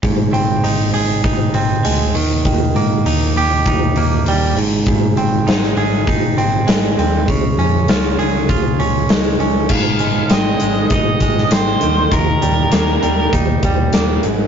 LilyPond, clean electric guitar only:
\new Staff \with { instrumentName = "Clean electric guitar" } { \time 4/4 \key aes \major \tempo 4 = 99 aes,8 c'8 ees'8 aes'8 ees'8 c'8 aes8 ees8 | ees8 bes8 ees'8 g'8 ees'8 bes8 g8 aes,8 | aes,8 c'8 ees'8 aes'8 ees'8 c'8 aes8 c'8 | des8 des'8 f'8 aes'8 f'8 des'8 aes8 des'8 |
aes,8 aes8 c'8 aes8 ees'8 aes8 c'8 ees8 | ees8 g8 bes8 g8 ees'8 g8 bes8 aes,8 | }